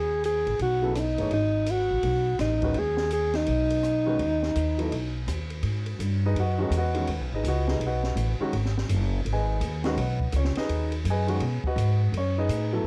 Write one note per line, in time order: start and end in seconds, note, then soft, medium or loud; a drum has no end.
0.00 0.43 D#2 medium
0.00 0.25 G#4 medium
0.24 0.58 G#4 medium
0.24 hi-hat pedal soft
0.24 ride medium
0.47 0.58 A1 medium
0.47 ride soft
0.59 1.15 B1 medium
0.59 0.90 F#4 medium
0.59 ride medium
0.82 0.94 C#3 medium
0.82 0.95 F#3 medium
0.82 0.95 B3 medium
0.82 0.95 E4 medium
0.82 0.96 A4 medium
0.95 1.00 D4 medium
0.95 cross-stick medium
0.95 hi-hat pedal medium
0.95 ride medium
0.99 1.33 D#4 medium
1.18 1.30 G1 medium
1.18 1.30 E3 medium
1.18 1.31 A3 medium
1.18 1.31 D#4 soft
1.18 1.31 G#4 medium
1.18 1.31 C#5 medium
1.18 ride soft
1.30 1.86 G#1 medium
1.30 1.72 D#4 medium
1.30 ride soft
1.66 hi-hat pedal medium
1.66 ride medium
1.71 2.40 F#4 medium
1.91 2.02 A1 medium
2.03 2.37 B1 medium
2.03 ride medium
2.39 2.73 A1 medium
2.39 2.80 D#4 medium
2.39 cross-stick medium
2.39 snare soft
2.39 hi-hat pedal medium
2.39 ride medium
2.62 2.75 D#3 medium
2.62 2.75 G#3 medium
2.62 2.75 C#4 medium
2.62 2.75 F#4 medium
2.62 2.75 B4 medium
2.62 kick soft
2.62 ride soft
2.74 3.44 D#2 medium
2.74 ride soft
2.79 3.12 G#4 medium
2.97 snare soft
3.10 3.38 G#4 medium
3.10 hi-hat pedal medium
3.10 ride medium
3.33 5.29 D#4 medium
3.33 snare soft
3.33 ride soft
3.46 4.17 B1 medium
3.46 ride medium
3.70 ride medium
3.83 cross-stick medium
3.83 hi-hat pedal soft
4.06 4.18 D#3 medium
4.06 4.19 G#3 medium
4.06 4.19 C#4 medium
4.06 4.19 F#4 medium
4.06 4.19 B4 medium
4.19 4.53 D#2 medium
4.19 ride soft
4.43 snare soft
4.55 4.89 D#2 medium
4.55 hi-hat pedal soft
4.55 ride medium
4.78 4.91 F#3 medium
4.78 4.91 B3 medium
4.78 4.91 E4 medium
4.78 4.91 A4 medium
4.78 4.92 D#5 medium
4.78 ride soft
4.91 5.25 B1 medium
4.91 ride medium
5.27 5.61 D#2 medium
5.27 cross-stick medium
5.27 hi-hat pedal medium
5.27 ride medium
5.50 ride soft
5.63 5.99 G#2 medium
5.63 ride medium
5.86 ride soft
5.99 6.34 G2 medium
5.99 hi-hat pedal soft
5.99 ride medium
6.26 6.37 D#4 medium
6.26 6.38 G#4 medium
6.26 6.37 B4 medium
6.26 6.38 D#5 medium
6.36 6.59 F#4 medium
6.36 6.60 B4 medium
6.36 6.61 D#5 medium
6.36 6.60 F#5 medium
6.36 ride medium
6.58 6.71 D#3 medium
6.58 6.71 G#3 medium
6.58 6.72 C#4 medium
6.58 6.72 F#4 medium
6.58 6.74 G#4 soft
6.58 6.74 B4 soft
6.62 6.74 D#4 soft
6.62 6.74 D#5 medium
6.70 7.07 E2 medium
6.70 hi-hat pedal soft
6.70 ride medium
6.77 6.94 F#4 medium
6.77 7.30 B4 medium
6.77 7.30 D#5 medium
6.77 7.30 F#5 medium
6.94 7.07 D#3 medium
6.94 7.07 G#3 medium
6.94 7.07 C#4 medium
6.94 7.08 F#4 medium
6.94 ride soft
7.07 7.19 D#2 medium
7.07 ride medium
7.19 7.31 B1 soft
7.32 7.43 G#1 medium
7.32 7.46 D#4 medium
7.32 7.46 G#4 soft
7.32 7.46 B4 soft
7.32 7.46 D#5 medium
7.43 7.79 C#2 medium
7.43 hi-hat pedal soft
7.43 ride medium
7.48 7.69 F#4 medium
7.48 7.68 B4 medium
7.48 7.68 D#5 medium
7.48 7.69 F#5 medium
7.68 7.81 D#4 soft
7.68 7.81 G#4 medium
7.68 7.81 B4 medium
7.68 7.81 D#5 medium
7.68 snare medium
7.80 8.15 B1 medium
7.80 ride medium
7.86 8.39 F#4 medium
7.86 8.39 B4 medium
7.86 8.39 D#5 medium
7.86 8.39 F#5 medium
8.03 snare soft
8.16 8.38 A1 medium
8.16 hi-hat pedal medium
8.16 ride medium
8.39 8.52 D#3 medium
8.39 8.52 G#3 medium
8.39 8.52 C#4 medium
8.39 8.53 F#4 medium
8.39 muted upright bass stroke soft
8.53 8.88 G#1 medium
8.53 ride medium
8.65 snare soft
8.78 snare soft
8.89 9.24 F#1 loud
8.89 hi-hat pedal medium
8.89 ride medium
9.25 9.60 G#1 medium
9.25 ride medium
9.33 9.84 G#4 medium
9.33 9.84 B4 medium
9.33 9.84 D#5 medium
9.33 9.84 G#5 medium
9.61 9.96 D#2 medium
9.61 hi-hat pedal soft
9.61 ride medium
9.84 9.96 D#3 medium
9.84 9.96 G#3 medium
9.84 9.97 C#4 medium
9.84 9.97 F#4 medium
9.84 10.31 B4 medium
9.84 10.31 D#5 medium
9.84 10.31 F#5 medium
9.84 snare medium
9.84 ride soft
9.97 10.32 B1 medium
9.97 ride medium
10.20 kick soft
10.32 10.55 C#2 medium
10.32 hi-hat pedal soft
10.32 ride medium
10.36 10.57 C#4 medium
10.36 10.57 C#5 medium
10.44 snare soft
10.55 10.90 D#4 medium
10.55 10.91 G#4 medium
10.55 10.91 B4 medium
10.55 10.90 D#5 medium
10.55 muted upright bass stroke soft
10.55 snare soft
10.55 ride soft
10.69 11.04 D#2 medium
10.69 ride medium
10.92 ride soft
11.05 11.40 F#2 medium
11.05 hi-hat pedal medium
11.05 ride medium
11.10 11.63 G#4 medium
11.10 11.63 B4 medium
11.10 11.63 D#5 medium
11.10 11.63 G#5 medium
11.27 11.40 D#3 medium
11.27 11.40 G#3 medium
11.27 11.40 C#4 medium
11.27 11.41 F#4 medium
11.27 ride soft
11.40 11.62 B2 medium
11.40 ride medium
11.63 12.12 F#4 medium
11.63 12.12 B4 medium
11.63 12.11 D#5 medium
11.63 12.12 F#5 medium
11.63 muted upright bass stroke soft
11.63 kick medium
11.76 12.12 G#2 medium
11.76 hi-hat pedal medium
11.76 ride medium
12.12 12.48 F#2 medium
12.12 ride medium
12.18 12.38 C#4 medium
12.18 12.38 C#5 medium
12.38 12.71 D#4 medium
12.38 12.72 G#4 medium
12.38 12.71 B4 medium
12.38 12.71 D#5 medium
12.49 12.83 A2 medium
12.49 hi-hat pedal medium
12.49 ride medium
12.73 12.85 F#3 medium
12.73 12.85 B3 medium
12.73 12.85 E4 medium
12.73 12.85 A4 medium